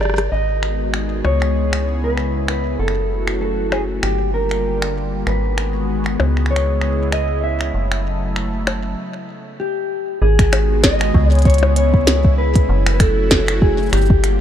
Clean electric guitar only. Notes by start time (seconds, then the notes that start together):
0.01 D5
0.32 D#5
1.25 C#5
2.04 B4
2.49 B4
2.80 A4
3.41 A4
3.72 G#4
4.03 G4
4.34 A#4
5.27 B4
6.51 C#5
7.13 D#5
7.44 E5
9.60 G4
10.22 G#4
10.84 D#5
11.33 C#5
11.46 C#5
11.76 C#5
12.38 B4
12.94 B4
13.00 A4
13.62 G#4
13.93 G4